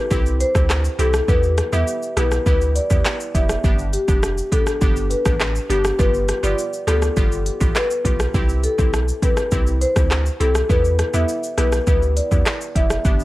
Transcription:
0.10 sub bass C2, synth pluck C4 E4 G4, kick, shaker
0.26 shaker
0.41 marimba C5, closed hi-hat, shaker
0.55 sub bass D2, synth pluck C4 E4 G4, kick, cross-stick, shaker
0.70 cross-stick, clap, shaker
0.85 shaker
0.99 sub bass C2, synth pluck C4 E4 G4, marimba A4, closed hi-hat, shaker
1.14 cross-stick, shaker
1.28 sub bass E2, synth pluck B3 E4 G4, marimba B4, kick, shaker
1.43 shaker
1.58 cross-stick, closed hi-hat, shaker
1.72 sub bass E2, synth pluck B3 E4 G4, marimba E5, shaker
1.88 shaker
2.02 shaker
2.17 sub bass B1, synth pluck B3 E4 G4, marimba B4, cross-stick, closed hi-hat, shaker
2.32 cross-stick, shaker
2.46 sub bass D2, synth pluck B3 E4 G4, marimba B4, kick, shaker
2.61 shaker
2.75 marimba D5, closed hi-hat, shaker
2.90 sub bass E2, synth pluck B3 E4 G4, kick, shaker
3.05 cross-stick, clap, shaker
3.20 shaker
3.34 sub bass F1, synth pluck B3 E4 G4, marimba E5, kick, closed hi-hat, shaker
3.49 cross-stick, shaker
3.64 sub bass G1, synth pluck B3 D4 G4, kick, shaker
3.79 shaker
3.93 marimba G4, closed hi-hat, shaker
4.08 sub bass F1, synth pluck B3 D4 G4, kick, shaker
4.23 cross-stick, shaker
4.38 shaker
4.52 synth pluck B3 D4 G4, marimba A4, kick, closed hi-hat, shaker
4.67 cross-stick, shaker
4.81 sub bass G1, synth pluck B3 D4 G4, kick, shaker
4.97 shaker
5.10 marimba B4, closed hi-hat, shaker
5.25 sub bass A1, synth pluck B3 D4 G4, kick, cross-stick, shaker
5.40 cross-stick, clap, shaker
5.56 shaker
5.70 sub bass G1, synth pluck B3 D4 G4, marimba G4, closed hi-hat, shaker
5.85 cross-stick, shaker
5.99 sub bass G1, synth pluck B3 F4 G4, marimba B4, kick, shaker
6.14 shaker
6.28 cross-stick, closed hi-hat, shaker
6.43 sub bass G1, synth pluck B3 F4 G4, marimba D5, shaker
6.58 shaker
6.73 shaker
6.87 sub bass D2, synth pluck B3 F4 G4, marimba A4, cross-stick, closed hi-hat, shaker
7.02 cross-stick, shaker
7.16 sub bass G1, synth pluck B3 F4 G4, kick, shaker
7.32 shaker
7.46 closed hi-hat, shaker
7.60 sub bass A1, synth pluck B3 F4 G4, kick, shaker
7.75 marimba B4, cross-stick, clap, shaker
7.91 shaker
8.05 sub bass B1, synth pluck B3 F4 G4, kick, closed hi-hat, shaker
8.20 cross-stick, shaker
8.34 sub bass C2, synth pluck C4 E4 G4, kick, shaker
8.49 shaker
8.64 marimba A4, closed hi-hat, shaker
8.78 sub bass B1, synth pluck C4 E4 G4, kick, shaker
8.94 cross-stick, shaker
9.08 shaker
9.23 synth pluck C4 E4 G4, marimba B4, kick, closed hi-hat, shaker
9.37 cross-stick, shaker
9.52 sub bass C2, synth pluck C4 E4 G4, kick, shaker
9.67 shaker
9.81 marimba C5, closed hi-hat, shaker
9.96 sub bass D2, synth pluck C4 E4 G4, kick, cross-stick, shaker
10.11 cross-stick, clap, shaker
10.26 shaker
10.40 sub bass C2, synth pluck C4 E4 G4, marimba A4, closed hi-hat, shaker
10.55 cross-stick, shaker
10.69 sub bass E2, synth pluck B3 E4 G4, marimba B4, kick, shaker
10.85 shaker
10.99 cross-stick, closed hi-hat, shaker
11.13 sub bass E2, synth pluck B3 E4 G4, marimba E5, shaker
11.29 shaker
11.44 shaker
11.58 sub bass B1, synth pluck B3 E4 G4, marimba B4, cross-stick, closed hi-hat, shaker
11.72 cross-stick, shaker
11.87 sub bass D2, synth pluck B3 E4 G4, marimba B4, kick, shaker
12.02 shaker
12.16 marimba D5, closed hi-hat, shaker
12.31 sub bass E2, synth pluck B3 E4 G4, kick, shaker
12.46 cross-stick, clap, shaker
12.61 shaker
12.75 sub bass F1, synth pluck B3 E4 G4, marimba E5, kick, closed hi-hat, shaker
12.90 cross-stick, shaker
13.05 sub bass G1, synth pluck B3 D4 G4, kick, shaker
13.20 shaker

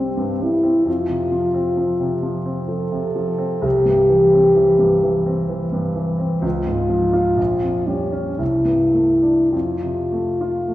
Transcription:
Already playing: grand piano C2 G2 G3 C4, french horn C4
0.17 grand piano G2
0.40 grand piano G3, french horn E4
0.63 grand piano C4
0.86 grand piano F2, french horn F4
1.09 grand piano C3
1.32 grand piano F3
1.54 grand piano C4
1.77 grand piano F3
2.00 grand piano C3
2.23 grand piano F3
2.46 grand piano C4
2.68 grand piano F3, french horn A4
2.92 grand piano C3
3.16 grand piano F3
3.38 grand piano C4
3.62 grand piano C2, french horn G4
3.85 grand piano G2
4.10 grand piano E3
4.33 grand piano C4
4.56 grand piano E3
4.79 grand piano G2
5.03 grand piano E3
5.26 grand piano C4
5.49 grand piano E3
5.72 grand piano G2
5.95 grand piano E3
6.18 grand piano C4
6.42 grand piano C#2, french horn F4
6.66 grand piano G#2
6.89 grand piano F3
7.13 grand piano F4
7.37 grand piano A#1
7.62 grand piano F2
7.87 grand piano G3, french horn C#4
8.12 grand piano C#4
8.39 grand piano C2, french horn E4
8.65 grand piano G2
8.93 grand piano A3
9.22 grand piano D4
9.52 grand piano F2, french horn F4
9.83 grand piano C3
10.12 grand piano A3
10.41 grand piano F4
10.68 grand piano A3

